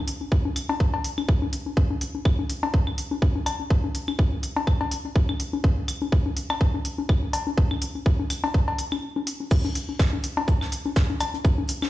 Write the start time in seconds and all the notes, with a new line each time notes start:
0.08 open hi-hat
0.21 high conga
0.32 kick
0.45 high conga
0.56 open hi-hat, claves
0.69 cowbell, high conga
0.80 kick
0.94 cowbell, high conga
1.04 open hi-hat
1.18 high conga, claves
1.29 kick
1.42 high conga
1.53 open hi-hat
1.66 high conga
1.77 kick
1.90 high conga
2.01 open hi-hat
2.15 high conga
2.25 kick, claves
2.39 high conga
2.50 open hi-hat
2.63 cowbell, high conga
2.74 kick
2.87 high conga, claves
2.98 open hi-hat
3.11 high conga
3.22 kick
3.35 high conga
3.46 open hi-hat, cowbell, claves
3.60 high conga
3.70 kick
3.84 high conga
3.95 open hi-hat
4.08 high conga, claves
4.19 kick
4.32 high conga
4.43 open hi-hat
4.56 cowbell, high conga
4.67 kick, claves
4.81 cowbell, high conga
4.91 open hi-hat
5.05 high conga
5.16 kick
5.29 high conga, claves
5.40 open hi-hat
5.53 high conga
5.64 kick
5.77 high conga
5.88 open hi-hat, claves
6.02 high conga
6.12 kick
6.26 high conga
6.37 open hi-hat
6.50 cowbell, high conga, claves
6.61 kick
6.74 high conga
6.85 open hi-hat
6.98 high conga
7.09 kick, claves
7.23 high conga
7.33 open hi-hat, cowbell
7.47 high conga
7.58 kick
7.71 high conga, claves
7.82 open hi-hat
7.95 high conga
8.06 kick
8.19 high conga
8.30 open hi-hat, claves
8.44 cowbell, high conga
8.54 kick
8.68 cowbell, high conga
8.79 open hi-hat
8.92 high conga, claves
9.16 high conga
9.27 open hi-hat
9.40 high conga
9.51 kick, crash, shaker
9.65 closed hi-hat, high conga
9.75 open hi-hat, shaker
9.89 high conga
9.99 kick, snare, claves, shaker
10.13 high conga
10.23 open hi-hat, shaker
10.37 cowbell, high conga
10.48 kick, shaker
10.61 snare, high conga, claves
10.72 open hi-hat, shaker
10.86 high conga
10.96 kick, snare, shaker
11.10 high conga
11.20 open hi-hat, cowbell, claves, shaker
11.34 closed hi-hat, high conga
11.45 kick, shaker
11.58 high conga
11.68 open hi-hat, shaker
11.82 snare, high conga, claves